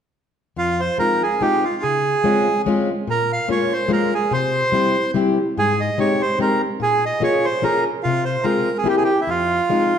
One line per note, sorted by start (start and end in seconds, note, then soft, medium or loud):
0.56 0.89 F2 soft
0.56 0.81 F4 medium
0.80 0.98 C5 medium
0.98 1.21 G#3 soft
0.98 1.22 C4 soft
0.98 1.22 D#4 soft
0.98 1.22 F4 soft
0.98 1.22 A#4 medium
1.23 1.42 G#4 medium
1.41 1.64 G#3 soft
1.41 1.64 C4 soft
1.41 1.64 D#4 soft
1.41 1.64 F4 medium
1.41 1.65 G4 medium
1.64 1.84 F4 medium
1.82 2.15 C#3 medium
1.82 2.62 G#4 medium
2.24 2.47 G#3 soft
2.24 2.47 C4 soft
2.24 2.47 C#4 soft
2.24 2.47 F4 medium
2.66 2.88 G#3 medium
2.66 2.89 C4 medium
2.66 2.89 C#4 medium
2.66 2.89 F4 medium
3.07 3.39 A#2 medium
3.07 3.32 A#4 medium
3.33 3.49 F5 medium
3.48 3.71 G#3 soft
3.48 3.71 A#3 soft
3.48 3.71 C#4 soft
3.48 3.72 F4 medium
3.48 3.73 C#5 medium
3.73 3.92 C5 medium
3.88 4.12 G#3 medium
3.88 4.12 A#3 soft
3.88 4.12 C#4 soft
3.88 4.13 F4 medium
3.92 4.14 A#4 medium
4.14 4.33 G#4 medium
4.31 4.63 C3 soft
4.31 5.11 C5 medium
4.72 4.95 G3 soft
4.72 4.96 C4 soft
4.72 4.96 E4 soft
4.72 4.96 G4 medium
5.14 5.37 G3 soft
5.14 5.37 C4 soft
5.14 5.38 E4 soft
5.14 5.38 G4 medium
5.57 5.89 G#2 soft
5.57 5.81 G#4 medium
5.80 5.99 D#5 medium
5.98 6.21 G#3 soft
5.98 6.21 C4 soft
5.98 6.21 D#4 soft
5.98 6.21 G4 soft
5.98 6.22 C#5 medium
6.22 6.39 C5 medium
6.39 6.62 G#3 soft
6.39 6.62 C4 soft
6.39 6.62 D#4 soft
6.39 6.62 G4 soft
6.39 6.62 A#4 medium
6.80 7.12 A#2 soft
6.80 7.05 G#4 medium
7.06 7.22 D#5 medium
7.20 7.44 A#3 soft
7.20 7.44 C#4 soft
7.20 7.44 F4 soft
7.20 7.45 G#4 medium
7.20 7.46 C#5 medium
7.45 7.64 C5 medium
7.62 7.85 A#3 soft
7.62 7.85 C#4 soft
7.62 7.86 F4 soft
7.62 7.86 G#4 medium
7.62 7.84 A#4 medium
8.03 8.36 C3 medium
8.03 8.25 F4 medium
8.25 8.46 C5 medium
8.44 8.67 G#3 soft
8.44 8.68 C4 soft
8.44 8.68 F4 soft
8.44 8.68 G#4 medium
8.44 8.78 A#4 medium
8.78 8.88 G#4 medium
8.84 9.08 A#3 soft
8.84 9.08 C4 soft
8.84 9.09 E4 soft
8.84 9.09 G4 medium
8.89 8.96 G4 medium
8.97 9.03 G#4 medium
9.04 9.21 G4 medium
9.21 9.30 E4 medium
9.27 9.60 F2 medium
9.27 9.98 F4 medium
9.70 9.93 G#3 soft
9.70 9.93 C4 soft
9.70 9.93 D#4 soft
9.70 9.93 F4 medium